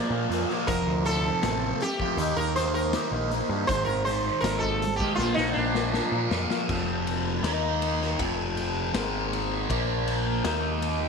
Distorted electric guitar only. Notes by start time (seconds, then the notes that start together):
Already playing: A#2 F3 A#3
0.11 F3 A#3
0.30 A#2 F3 A#3
0.49 F3 A#3
0.68 F2 C3 F3
1.05 F2 C3 F3
1.25 C3 F3
1.43 F2 C3 F3
1.82 muted distorted electric guitar stroke
2.01 C3 F3
2.19 D#3 A#3 D#4
2.38 A#3 D#4
2.56 D#3 A#3 D#4
2.93 D#3 A#3 D#4
3.12 A#3 D#4
3.32 D#3 A#3 D#4
3.51 A#3 D#4
3.69 G#2 D#3 G#3
4.07 G#2 D#3 G#3
4.25 D#3 G#3
4.43 G#2 D#3 G#3
4.82 muted distorted electric guitar stroke
5.01 D#3 G#3
5.19 A#2 F3 A#3
5.38 F3 A#3
5.56 A#2 F3 A#3
5.94 A#2 F3 A#3
6.12 F3 A#3
6.31 A#2 F3 A#3
6.50 F3 A#3
6.68 F2 C3 F3
7.45 D#3 A#3 D#4
8.20 F2 C3 F3
8.95 G#2 D#3 G#3
9.70 A#2 F3 A#3
10.45 D#3 A#3 D#4